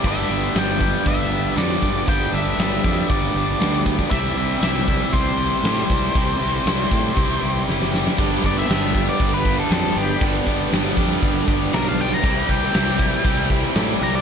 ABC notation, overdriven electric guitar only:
X:1
M:4/4
L:1/8
Q:1/4=118
K:G
V:1 name="Overdriven electric guitar"
[G,,D,G,B,DG] [G,B,DG] [G,B,DG] [G,B,DG] [G,,D,G,B,DG] [G,B,DG] [G,B,DG]2 | [G,,D,G,B,DG] [G,B,DG] [G,B,DG] [G,B,DG] [G,,D,G,B,DG] [G,B,DG] [G,B,DG]2 | [C,E,G,EG] [G,EG] [E,G,EG] [G,EG] [C,E,G,EG] [G,EG] [E,G,EG]2 | [C,E,G,EG] [G,EG] [E,G,EG] [G,EG] [C,E,G,EG] [G,EG] [E,G,EG]2 |
[G,,D,G,B,DG] [G,B,DG] [G,B,DG] [G,B,DG] [G,,D,G,B,DG] [G,B,DG] [G,B,DG]2 | [G,,D,G,B,DG] [G,B,DG] [G,B,DG] [G,B,DG] [G,,D,G,B,DG] [G,B,DG] [G,B,DG]2 | [C,E,G,EG] [G,EG] [E,G,EG] [G,EG] [C,E,G,EG] [G,EG] [E,G,EG]2 |]